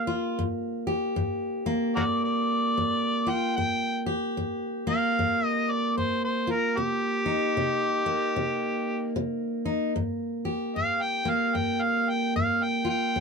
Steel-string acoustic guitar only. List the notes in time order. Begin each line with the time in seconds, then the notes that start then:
Already playing: G2 A#3 G4
0.07 F4
0.39 G2
0.87 G4
1.16 G2
1.66 A#3
1.97 G2
2.78 G2
3.27 F4
3.58 G2
4.06 G4
4.37 G2
4.87 A#3
5.19 G2
5.98 G2
6.47 F4
6.77 C3
7.26 D#4
7.57 C3
8.06 A#3
8.36 C3
9.16 C3
9.65 D#4
9.96 G2
10.45 G4
10.76 G2
11.25 A#3
11.55 G2
12.36 G2
12.85 F4
13.16 G2